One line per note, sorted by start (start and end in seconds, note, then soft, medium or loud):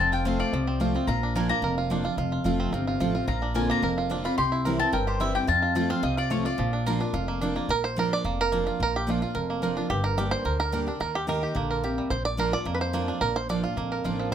0.00 0.41 F1 medium
0.00 0.50 F2 medium
0.00 0.24 C4 medium
0.00 0.12 F4 medium
0.00 0.12 A5 loud
0.12 0.40 F4 medium
0.12 0.25 G5 loud
0.25 0.51 F3 loud
0.25 0.52 A3 loud
0.25 0.64 C4 medium
0.25 0.52 C4 loud
0.25 0.52 F4 loud
0.25 0.40 F5 medium
0.40 0.81 F4 medium
0.40 1.04 D5 loud
0.53 0.96 C2 medium
0.53 1.06 C3 medium
0.53 1.93 F3 medium
0.67 0.94 C4 medium
0.80 0.94 F3 medium
0.80 0.94 A3 medium
0.80 0.94 C4 medium
0.80 1.09 F4 medium
0.80 0.93 F4 medium
0.94 1.08 C4 medium
0.94 1.08 C4 soft
0.94 1.07 F4 medium
1.07 1.51 A#1 medium
1.07 1.60 A#2 medium
1.07 1.77 F4 medium
1.07 1.33 A#5 medium
1.23 1.61 D4 medium
1.35 1.49 F3 medium
1.35 1.49 A#3 medium
1.35 1.49 D4 loud
1.35 1.48 F4 loud
1.35 1.63 A#4 medium
1.35 1.49 G#5 medium
1.49 1.88 A#3 medium
1.49 1.63 D4 medium
1.49 1.62 F4 medium
1.49 1.75 A#5 loud
1.62 2.06 F1 medium
1.62 2.15 F2 medium
1.62 2.02 A#4 medium
1.78 2.04 F4 medium
1.90 2.04 F3 medium
1.90 2.04 A#3 medium
1.90 2.04 D4 medium
1.90 2.18 D4 medium
1.90 2.02 F4 loud
2.04 2.18 D4 soft
2.04 2.17 F4 medium
2.04 2.18 F4 medium
2.17 2.39 F1 loud
2.17 2.70 F2 medium
2.17 2.31 F4 medium
2.32 2.44 F4 medium
2.44 2.68 F1 medium
2.44 2.71 F3 medium
2.44 2.71 A3 loud
2.44 2.72 C4 loud
2.44 2.71 F4 soft
2.44 2.72 F4 loud
2.60 3.45 C4 medium
2.72 2.96 G1 medium
2.72 3.26 C3 medium
2.72 2.86 F4 medium
2.87 2.99 F4 medium
3.00 3.24 A1 medium
3.00 3.14 F3 medium
3.00 3.14 A3 medium
3.00 3.14 C4 loud
3.00 3.14 F4 medium
3.00 3.13 F4 medium
3.14 3.28 C4 medium
3.14 3.27 F4 medium
3.27 3.71 A#1 medium
3.27 3.80 A#2 medium
3.27 3.67 F4 medium
3.27 3.54 A#5 medium
3.42 3.80 D4 medium
3.54 3.81 D3 medium
3.54 3.81 A#3 loud
3.54 3.82 C4 loud
3.54 3.82 F4 loud
3.54 3.82 A#4 medium
3.54 3.69 G#5 medium
3.70 4.08 A#3 medium
3.70 3.96 A#5 loud
3.82 4.26 F1 medium
3.82 4.35 F2 medium
3.82 4.22 A#4 medium
3.98 4.24 F4 medium
4.09 4.24 D3 medium
4.09 4.24 A#3 medium
4.09 4.24 C4 medium
4.09 4.38 D4 medium
4.09 4.23 F4 medium
4.24 4.38 C4 medium
4.24 4.37 F4 medium
4.24 4.38 F4 medium
4.24 4.37 B5 medium
4.38 4.81 C2 medium
4.38 4.90 C3 medium
4.38 4.77 G4 medium
4.38 4.77 C6 loud
4.52 4.90 E4 medium
4.65 4.79 E3 loud
4.65 4.79 G3 medium
4.65 4.80 C4 medium
4.65 4.78 E4 loud
4.65 4.92 A#4 medium
4.79 5.18 C4 medium
4.79 4.93 C4 medium
4.79 4.92 E4 medium
4.79 4.93 A5 loud
4.93 5.36 G1 medium
4.93 5.45 G2 medium
4.93 5.32 A#4 medium
4.93 5.07 G5 medium
5.07 5.34 G4 medium
5.07 5.21 C5 medium
5.20 5.34 E3 medium
5.20 5.34 G3 medium
5.20 5.35 C4 medium
5.20 5.48 E4 medium
5.20 5.34 E4 loud
5.20 5.34 E5 medium
5.35 5.48 C4 soft
5.35 5.48 E4 medium
5.35 5.48 G4 medium
5.35 5.48 G5 loud
5.47 6.00 F2 medium
5.47 5.91 F2 medium
5.47 5.62 F4 medium
5.47 5.87 A5 loud
5.62 5.76 F4 medium
5.75 5.89 F3 medium
5.75 5.89 A3 loud
5.75 5.90 C4 loud
5.75 6.03 F4 medium
5.75 5.88 F4 loud
5.89 6.28 C4 medium
5.89 6.04 C4 medium
5.89 6.03 F4 medium
5.89 6.03 F5 loud
6.03 6.46 C2 medium
6.03 6.56 C3 medium
6.03 6.17 F4 medium
6.03 6.17 D#5 medium
6.17 6.31 F4 medium
6.17 6.31 D5 loud
6.30 6.44 F3 medium
6.30 6.45 A3 medium
6.30 6.45 C4 loud
6.30 6.45 F4 medium
6.30 6.44 F4 loud
6.30 6.45 C#5 medium
6.45 6.59 C4 medium
6.45 6.58 F4 medium
6.45 7.13 F4 medium
6.45 6.84 D5 loud
6.58 7.02 A#1 loud
6.58 7.11 A#2 medium
6.58 6.98 F3 medium
6.73 6.99 D4 medium
6.86 7.00 F3 medium
6.86 7.00 A#3 medium
6.86 7.00 D4 loud
6.86 6.99 F4 loud
6.86 7.25 A#4 medium
7.01 7.39 D4 medium
7.01 7.14 D4 medium
7.01 7.13 F4 medium
7.13 7.57 F1 medium
7.13 7.66 F2 medium
7.13 7.53 F4 medium
7.28 7.55 A#3 medium
7.41 7.55 F3 medium
7.41 7.55 A#3 medium
7.41 7.69 D4 medium
7.41 7.56 D4 medium
7.41 7.55 F4 medium
7.56 7.69 A#3 medium
7.56 7.69 D4 soft
7.56 7.69 F4 medium
7.69 8.12 A#1 loud
7.69 8.22 A#2 medium
7.69 7.84 A#4 loud
7.84 7.96 C5 loud
7.96 8.23 F3 loud
7.96 8.23 A#3 medium
7.96 8.23 D4 loud
7.96 8.23 F4 loud
7.96 8.12 A#4 medium
8.13 8.40 D5 loud
8.24 8.68 F1 medium
8.24 8.77 F2 medium
8.24 8.52 A#3 medium
8.41 8.81 A#4 loud
8.52 8.66 F3 medium
8.52 9.49 A#3 medium
8.52 8.66 A#3 loud
8.52 8.66 D4 medium
8.52 8.66 F4 medium
8.67 8.80 D4 soft
8.67 9.05 F4 medium
8.67 8.79 F4 medium
8.80 9.23 A#1 medium
8.80 9.32 A#2 medium
8.80 8.96 A#4 loud
8.96 9.09 G4 loud
9.07 9.21 F3 medium
9.07 9.21 A#3 medium
9.07 9.21 D4 loud
9.07 9.21 F4 loud
9.07 9.21 F4 medium
9.22 9.35 D4 medium
9.22 9.34 F4 medium
9.22 9.60 F4 medium
9.35 9.78 F1 medium
9.35 9.87 F2 medium
9.35 9.62 A#4 medium
9.50 10.34 A#3 medium
9.62 9.76 F3 medium
9.62 9.76 A#3 medium
9.62 9.76 D4 medium
9.62 9.75 F4 medium
9.62 10.04 A#4 medium
9.77 9.90 D4 medium
9.77 9.90 D4 soft
9.77 9.89 F4 medium
9.90 10.33 G1 loud
9.90 10.43 G2 medium
9.90 10.05 G4 loud
10.04 10.18 A#4 loud
10.18 10.44 G3 medium
10.18 10.44 A#3 medium
10.18 10.44 D4 loud
10.18 10.32 G4 medium
10.18 10.45 G4 loud
10.31 10.57 C5 loud
10.45 10.89 D2 medium
10.45 10.98 D3 medium
10.45 10.60 A#4 medium
10.60 10.72 A#4 loud
10.72 10.86 G3 medium
10.72 10.86 A#3 medium
10.72 10.87 D4 medium
10.72 10.86 G4 loud
10.72 11.01 A#4 medium
10.87 11.01 D4 medium
10.87 11.00 D4 medium
10.87 11.00 G4 medium
11.00 11.44 D#2 medium
11.00 11.26 D#3 medium
11.00 11.15 A#4 loud
11.15 11.29 G4 loud
11.27 11.54 D#3 medium
11.27 11.54 A#3 loud
11.27 11.55 D#4 loud
11.27 11.55 G4 loud
11.27 11.68 A#4 medium
11.43 11.81 G4 medium
11.55 11.99 A#1 medium
11.55 11.82 D3 medium
11.55 12.13 A#3 medium
11.70 12.13 A#4 medium
11.84 12.10 C3 medium
11.84 12.10 G4 medium
11.98 12.11 G3 medium
12.10 12.54 A#1 medium
12.10 12.64 A#2 medium
12.10 12.25 C5 loud
12.25 12.39 D5 loud
12.37 12.52 F3 medium
12.37 12.52 A#3 loud
12.37 12.52 D4 loud
12.37 12.50 F4 loud
12.37 12.54 A#4 medium
12.52 12.66 D4 soft
12.52 12.65 F4 medium
12.52 12.74 D5 loud
12.65 13.19 F2 medium
12.65 13.09 F2 medium
12.65 12.93 A#3 medium
12.75 12.81 B4 medium
12.81 13.23 C5 loud
12.93 13.07 F3 medium
12.93 13.07 A#3 loud
12.93 13.39 A#3 medium
12.93 13.08 D4 loud
12.93 13.07 F4 loud
13.08 14.35 D4 medium
13.08 13.22 D4 soft
13.08 13.21 F4 medium
13.21 13.65 A#1 medium
13.21 13.75 A#2 medium
13.21 13.36 A#4 loud
13.36 13.49 C5 loud
13.49 13.63 F3 loud
13.49 13.63 A#3 loud
13.49 13.63 D4 loud
13.49 13.62 F4 loud
13.49 13.63 D5 medium
13.64 13.77 D4 soft
13.64 13.77 F4 medium
13.64 14.02 F4 medium
13.77 14.00 A#1 medium
13.77 14.30 F2 medium
13.77 14.35 A#3 medium
13.92 14.35 A#4 medium
14.04 14.28 A1 medium
14.04 14.31 F3 medium
14.04 14.31 A#3 medium
14.04 14.31 D4 medium
14.04 14.32 F4 medium
14.04 14.31 F4 loud
14.19 14.33 F3 medium